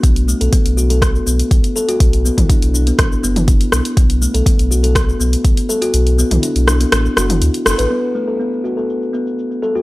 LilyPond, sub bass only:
\new Staff \with { instrumentName = "Sub bass" } { \clef bass \time 4/4 \key b \minor \tempo 4 = 122 b,,8 r16 b,,16 r16 b,,4 r16 b,,16 r16 b,,16 r8. | b,,8 r16 b,,16 r16 b,,8 r16 a,,16 r16 fis,,8. r16 b,,16 r16 | b,,8 r16 b,,16 r16 b,,4 r16 b,,16 r16 b,,16 r8. | b,,8 r16 b,,16 r16 b,,8 r16 a,,16 r16 fis,,8 d,16 r16 fis,,16 a,,16 |
r1 | }